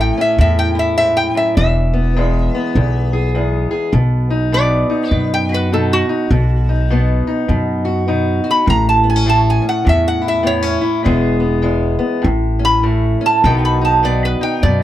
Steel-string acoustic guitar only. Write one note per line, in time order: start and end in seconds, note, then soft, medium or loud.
0.00 0.38 A2 medium
0.00 1.54 A3 medium
0.00 0.16 C#4 medium
0.00 0.74 E4 medium
0.18 1.55 C#4 medium
0.39 1.57 A2 medium
0.75 3.12 E4 medium
0.99 1.35 G#2 medium
1.35 1.57 F#2 medium
1.58 2.15 E2 medium
1.94 2.54 B3 medium
2.17 2.75 E2 medium
2.17 3.92 G#3 medium
2.55 3.35 B3 medium
2.76 3.34 E2 medium
3.13 3.70 G#4 medium
3.35 3.94 E2 medium
3.35 4.30 B3 medium
3.71 3.91 G#4 medium
3.92 4.52 B2 medium
4.30 4.89 D#4 medium
4.52 5.10 B2 medium
4.52 6.28 B3 medium
4.90 5.72 D#4 medium
5.11 5.71 B2 medium
5.49 6.28 F#4 medium
5.72 6.29 B2 medium
5.72 6.08 D#4 medium
6.09 6.29 D#4 medium
6.31 6.89 B2 medium
6.69 7.26 D#4 medium
6.90 7.47 B2 medium
6.90 8.66 B3 medium
7.27 8.07 D#4 medium
7.48 8.06 B2 medium
7.85 8.43 F#4 medium
8.08 8.65 B2 medium
8.08 8.65 D#4 medium
8.44 8.65 F#4 medium
8.66 9.25 A2 medium
9.04 9.16 B3 medium
9.16 9.60 C#4 soft
9.26 9.84 A2 medium
9.26 11.02 A3 medium
9.62 10.43 C#4 medium
9.85 10.42 A2 medium
10.22 10.80 E4 medium
10.43 11.04 A2 medium
10.43 10.63 B3 medium
10.63 11.05 C#4 medium
10.81 11.05 E4 medium
11.03 11.61 E2 medium
11.03 12.21 E3 medium
11.03 11.61 G#3 medium
11.03 11.39 B3 medium
11.03 12.22 G#4 medium
11.40 11.98 B3 medium
11.62 12.23 E2 medium
11.62 12.21 G#3 medium
11.99 12.23 B3 medium
12.22 12.82 A2 medium
12.59 13.20 C#4 medium
12.83 13.43 A2 medium
12.83 13.41 A3 medium
13.21 13.41 C#4 medium
13.44 14.02 B2 medium
13.44 14.83 D#3 medium
13.44 14.02 B3 medium
13.44 13.80 D#4 medium
13.44 14.83 F#4 medium
13.81 14.40 D#4 medium
14.03 14.62 B2 medium
14.03 14.83 B3 medium
14.41 14.83 D#4 medium
14.64 14.83 B2 medium